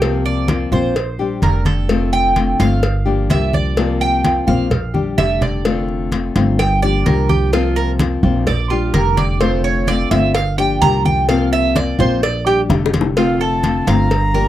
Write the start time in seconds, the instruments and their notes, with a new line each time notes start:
Already playing: upright bass C2, cuban tres G4
0.02 nylon-string guitar C3 F3 A#3 C4 F4, cowbell, high conga
0.25 cuban tres D5, high conga
0.48 nylon-string guitar F3 A#3 C4 F4, cowbell, high conga
0.72 upright bass A#1, nylon-string guitar F3 A#3 C4 F4, cuban tres C5, low conga
0.95 muted nylon-string guitar stroke, cowbell, high conga
1.19 nylon-string guitar G3 D4 G4, high conga
1.42 upright bass F1, nylon-string guitar D3 G3 D4 G4, cuban tres A#4, cowbell, high conga
1.65 cuban tres A4, cowbell, high conga
1.89 nylon-string guitar D3 A3 C4 F4, cowbell, high conga
2.12 cuban tres G5, high conga
2.36 nylon-string guitar D3 A3 C4 F4, cowbell, high conga
2.59 upright bass G1, nylon-string guitar A3 C4 F4, cuban tres F5, cowbell, high conga
2.82 muted nylon-string guitar stroke, cowbell, high conga
3.05 nylon-string guitar F3 A#3 D4 G4, high conga
3.30 upright bass C2, nylon-string guitar F3 A#3 D4 G4, cuban tres E5, cowbell, high conga
3.53 cuban tres D5, high conga
3.77 nylon-string guitar C3 F3 A#3 C4 F4, cowbell, high conga
4.01 cuban tres G5, high conga
4.24 nylon-string guitar F3 A#3 C4 F4, cowbell, high conga
4.47 upright bass A#1, nylon-string guitar F3 A#3 C4 F4, cuban tres F5, low conga
4.70 muted nylon-string guitar stroke, cowbell, high conga, low conga
4.94 nylon-string guitar G3 D4 G4, high conga
5.18 upright bass F1, nylon-string guitar D3 G3 D4 G4, cuban tres E5, cowbell, high conga
5.41 cuban tres D5, cowbell, low conga
5.65 nylon-string guitar D3 A3 C4 F4, cowbell, high conga
5.89 high conga
6.12 nylon-string guitar D3 A3 C4 F4, cowbell, high conga
6.36 upright bass G1, nylon-string guitar A3 C4 F4, cowbell, high conga
6.59 cuban tres G5, muted nylon-string guitar stroke, cowbell, high conga
6.82 nylon-string guitar F3 A#3 D4 G4, cuban tres D5, high conga
7.06 upright bass C2, nylon-string guitar F3 A#3 D4 G4, cuban tres A#4, cowbell, high conga
7.29 cuban tres G4, high conga
7.53 nylon-string guitar C3 F3 A#3 C4 F4, cuban tres F4, cowbell, high conga
7.76 cuban tres A#4, high conga
7.99 nylon-string guitar F3 A#3 C4 F4, cowbell, high conga
8.23 upright bass A#1, nylon-string guitar F3 A#3 C4 F4, low conga
8.47 cuban tres D5, muted nylon-string guitar stroke, cowbell, high conga, low conga
8.70 nylon-string guitar G3 D4 G4, cuban tres F4, high conga
8.94 upright bass F1, nylon-string guitar D3 G3 D4 G4, cuban tres A#4, cowbell, high conga
9.17 cuban tres D5, cowbell, high conga
9.40 nylon-string guitar D3 A3 C4 F4, cuban tres C5, cowbell, high conga
9.64 cuban tres C#5, high conga
9.87 nylon-string guitar D3 A3 C4 F4, cuban tres D5, cowbell, high conga
10.11 upright bass G1, nylon-string guitar A3 C4 F4, cuban tres E5, cowbell, high conga
10.34 cuban tres F5, muted nylon-string guitar stroke, cowbell, high conga
10.58 nylon-string guitar F3 A#3 D4 G4, cuban tres G5, high conga
10.81 upright bass C2, nylon-string guitar F3 A#3 D4 G4, cuban tres A#5, cowbell, high conga
11.05 cuban tres G5, high conga
11.28 nylon-string guitar C3 F3 A#3 C4 F4, cuban tres F5, cowbell, high conga
11.52 cuban tres E5, high conga
11.76 nylon-string guitar F3 A#3 C4 F4, cuban tres D5, cowbell, high conga
11.99 upright bass A#1, nylon-string guitar F3 A#3 C4 F4, cuban tres C5, low conga
12.22 cuban tres D5, muted nylon-string guitar stroke, cowbell, high conga
12.46 nylon-string guitar G3 D4 G4, cuban tres G4, high conga
12.69 upright bass F1, nylon-string guitar D3 G3 D4 G4, cowbell, high bongo, high conga
12.86 high bongo
12.94 cowbell, high conga
13.01 low bongo
13.16 nylon-string guitar D3 A3 C4 F4, cuban tres F4, flute F5, cowbell, high conga
13.40 cuban tres A4, flute A5, high conga
13.63 nylon-string guitar D3 A3 C4 F4, cowbell, high conga
13.87 upright bass G1, nylon-string guitar A3 C4 F4, cuban tres F5, flute A#5, cowbell, high conga
14.10 muted nylon-string guitar stroke, cowbell, high conga
14.34 nylon-string guitar F3 A#3 D4 G4, cuban tres A#4, high conga